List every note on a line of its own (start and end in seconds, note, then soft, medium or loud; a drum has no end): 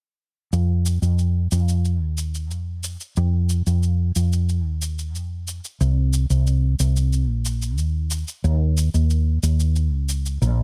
0.53 0.97 F2 medium
0.53 cabasa soft
0.86 cabasa medium
1.02 1.46 F2 medium
1.02 cabasa soft
1.19 cabasa soft
1.52 2.02 F2 medium
1.52 cabasa medium
1.69 cabasa soft
1.85 cabasa soft
2.02 2.51 D#2 medium
2.18 cabasa medium
2.35 cabasa soft
2.51 2.95 F2 medium
2.51 cabasa soft
2.84 cabasa medium
3.00 cabasa soft
3.16 3.61 F2 medium
3.16 cabasa soft
3.50 cabasa medium
3.67 4.11 F2 medium
3.67 cabasa soft
3.83 cabasa soft
4.16 4.65 F2 medium
4.16 cabasa medium
4.33 cabasa soft
4.49 cabasa soft
4.65 5.15 D#2 medium
4.82 cabasa medium
4.99 cabasa soft
5.15 5.59 F2 medium
5.15 cabasa soft
5.48 cabasa medium
5.65 cabasa soft
5.81 6.25 C2 medium
5.81 cabasa soft
6.13 cabasa medium
6.30 6.74 C2 medium
6.30 cabasa soft
6.47 cabasa soft
6.80 7.29 C2 medium
6.80 cabasa medium
6.97 cabasa soft
7.13 cabasa soft
7.29 7.78 A#1 medium
7.45 cabasa medium
7.62 cabasa soft
7.78 8.22 D#2 medium
7.78 cabasa soft
8.11 cabasa medium
8.28 cabasa soft
8.44 8.89 D#2 medium
8.44 cabasa soft
8.77 cabasa medium
8.94 9.38 D#2 medium
8.94 cabasa soft
9.10 cabasa soft
9.43 9.92 D#2 medium
9.43 cabasa medium
9.60 cabasa soft
9.76 cabasa soft
9.92 10.37 C#2 loud
10.09 cabasa medium
10.26 cabasa soft
10.42 10.63 A#1 medium
10.42 cabasa soft